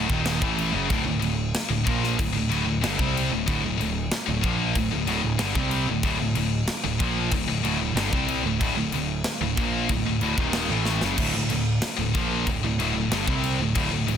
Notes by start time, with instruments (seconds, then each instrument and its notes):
0.09 picked electric bass D#1, distorted electric guitar D#2 A#2 D#3, kick
0.26 snare, crash
0.42 picked electric bass A1, distorted electric guitar A2 E3 A3, kick
0.58 crash
0.72 picked electric bass F#1, distorted electric guitar F#2 C#3
0.88 picked electric bass D1, distorted electric guitar D2 A2, kick, crash
1.04 picked electric bass D1, distorted electric guitar D2 A2
1.09 distorted electric guitar D2
1.19 picked electric bass D1, distorted electric guitar D2 A2, crash
1.24 distorted electric guitar D2 A2
1.55 snare, crash
1.69 picked electric bass D1, distorted electric guitar D2 A2
1.84 picked electric bass A#1, distorted electric guitar A#2 F3 A#3, kick, crash
2.04 snare
2.17 picked electric bass D1, distorted electric guitar D2 A2, kick, crash
2.33 picked electric bass D1, distorted electric guitar D2 A2
2.37 distorted electric guitar D2
2.49 picked electric bass D1, distorted electric guitar D2 A2, crash
2.64 picked electric bass D1, distorted electric guitar D2 A2
2.81 picked electric bass G1, distorted electric guitar G2 D3, snare, crash
2.97 picked electric bass C2, distorted electric guitar C3 G3 C4, kick
3.17 crash
3.31 picked electric bass D1, distorted electric guitar D2 A2
3.46 picked electric bass D1, distorted electric guitar D2 A2, kick, crash
3.63 picked electric bass D1, distorted electric guitar D2 A2
3.77 picked electric bass D1, distorted electric guitar D2 A2, crash
4.12 snare, crash
4.26 picked electric bass D1, distorted electric guitar D2 A2
4.41 picked electric bass A#1, distorted electric guitar A#2 F3 A#3, kick, crash
4.75 picked electric bass D1, distorted electric guitar D2 A2, kick, crash
4.91 picked electric bass D1, distorted electric guitar D2 A2
5.07 picked electric bass D1, distorted electric guitar D2 A2, crash
5.21 picked electric bass D1, distorted electric guitar D2 A2
5.38 picked electric bass G1, distorted electric guitar G2 D3, snare, crash
5.53 picked electric bass C2, distorted electric guitar C3 G3 C4, kick
5.71 crash
5.88 picked electric bass D1, distorted electric guitar D2 A2
6.03 picked electric bass D1, distorted electric guitar D2 A2, kick, crash
6.19 picked electric bass D1, distorted electric guitar D2 A2
6.35 picked electric bass D1, distorted electric guitar D2 A2, crash
6.68 snare, crash
6.84 picked electric bass D1, distorted electric guitar D2 A2
6.99 picked electric bass A#1, distorted electric guitar A#2 F3 A#3, kick, crash
7.31 picked electric bass D1, distorted electric guitar D2 A2, kick, crash
7.47 picked electric bass D1, distorted electric guitar D2 A2
7.63 picked electric bass D1, distorted electric guitar D2 A2, crash
7.79 picked electric bass D1, distorted electric guitar D2 A2
7.94 picked electric bass G1, distorted electric guitar G2, snare, crash
7.98 distorted electric guitar D3
8.12 picked electric bass C2, distorted electric guitar C3 G3 C4, kick
8.28 crash
8.43 picked electric bass D1, distorted electric guitar D2 A2
8.61 picked electric bass D1, distorted electric guitar D2 A2, kick, crash
8.75 picked electric bass D1, distorted electric guitar D2
8.79 distorted electric guitar A2
8.92 picked electric bass D1, distorted electric guitar D2 A2, crash
9.24 snare, crash
9.41 picked electric bass D1, distorted electric guitar D2 A2
9.57 picked electric bass A#1, distorted electric guitar A#2 F3 A#3, kick, crash
9.89 picked electric bass D1, distorted electric guitar D2 A2, kick, crash
10.04 picked electric bass D1, distorted electric guitar D2 A2
10.20 picked electric bass D1, distorted electric guitar D2 A2, crash
10.37 picked electric bass D#1, distorted electric guitar D#2 A#2 D#3, kick
10.53 snare, crash
10.70 picked electric bass A1, distorted electric guitar A2 E3 A3
10.85 snare
11.01 picked electric bass F#1, distorted electric guitar F#2 C#3, snare
11.17 picked electric bass D1, distorted electric guitar D2 A2, kick, crash
11.33 picked electric bass D1, distorted electric guitar D2 A2
11.49 picked electric bass D1, distorted electric guitar D2 A2, crash
11.82 snare, crash
11.97 picked electric bass D1, distorted electric guitar D2 A2
12.14 picked electric bass A#1, distorted electric guitar A#2 F3 A#3, kick, crash
12.46 picked electric bass D1, distorted electric guitar D2 A2, kick, crash
12.61 picked electric bass D1, distorted electric guitar D2 A2
12.78 picked electric bass D1, distorted electric guitar D2 A2, crash
12.94 picked electric bass D1, distorted electric guitar D2 A2
13.09 picked electric bass G1, distorted electric guitar G2 D3, snare, crash
13.26 picked electric bass C2, distorted electric guitar C3 G3 C4, kick
13.44 crash
13.59 picked electric bass D1, distorted electric guitar D2 A2
13.75 picked electric bass D1, distorted electric guitar D2 A2, kick, crash
13.90 picked electric bass D1, distorted electric guitar D2 A2
14.07 picked electric bass D1, distorted electric guitar D2 A2, crash